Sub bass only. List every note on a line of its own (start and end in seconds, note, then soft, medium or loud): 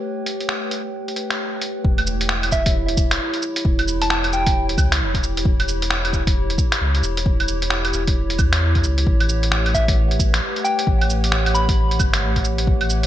1.84 2.96 E1 loud
2.97 3.19 E1 medium
3.65 4.77 E1 loud
4.78 5.02 C#2 medium
5.01 6.57 E1 loud
6.81 7.02 C#2 medium
7.03 7.92 E1 medium
7.94 8.40 E1 medium
8.39 8.83 E2 medium
8.84 9.05 C#2 loud
9.07 10.18 A1 loud
10.19 10.40 A1 medium
10.87 11.99 A1 loud
12.00 12.24 G1 medium
12.22 13.07 A1 medium